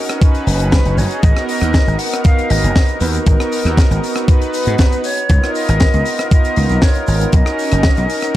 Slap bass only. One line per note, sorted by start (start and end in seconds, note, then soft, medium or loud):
0.47 0.78 F#1 loud
0.86 0.93 F#1 medium
0.97 1.06 F#1 loud
1.23 1.32 G#1 loud
1.62 1.77 D#2 medium
1.87 1.95 G#1 loud
2.50 2.59 G#1 medium
2.64 2.71 F#1 medium
3.01 3.17 D#2 medium
3.27 3.35 G#1 loud
3.65 3.80 D#2 medium
3.91 3.98 G#1 loud
4.67 4.74 G#2 medium
5.30 5.38 C#2 loud
5.69 5.84 G#1 medium
5.94 6.01 C#2 loud
6.57 6.65 C#2 medium
6.70 6.78 B1 medium
7.08 7.24 G#1 loud
7.33 7.42 B1 loud
7.72 7.87 F#1 medium
7.98 8.05 B1 loud